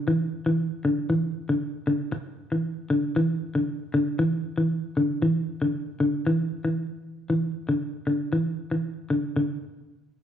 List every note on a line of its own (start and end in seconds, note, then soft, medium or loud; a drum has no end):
0.08 0.28 E3 medium
0.46 0.67 E3 medium
0.85 1.06 D3 medium
1.10 1.31 E3 medium
1.49 1.70 D3 medium
1.87 2.08 D3 medium
2.12 muted clean electric guitar stroke medium
2.52 2.73 E3 medium
2.90 3.11 D3 medium
3.16 3.37 E3 medium
3.55 3.76 D3 medium
3.94 4.15 D3 medium
4.19 4.40 E3 medium
4.58 4.79 E3 medium
4.97 5.18 D3 medium
5.22 5.43 E3 medium
5.62 5.83 D3 medium
6.00 6.21 D3 medium
6.27 6.47 E3 medium
6.65 6.86 E3 medium
7.30 7.51 E3 medium
7.69 7.90 D3 medium
8.07 8.28 D3 medium
8.33 8.54 E3 medium
8.71 8.93 E3 medium
9.10 9.31 D3 medium
9.36 9.52 D3 medium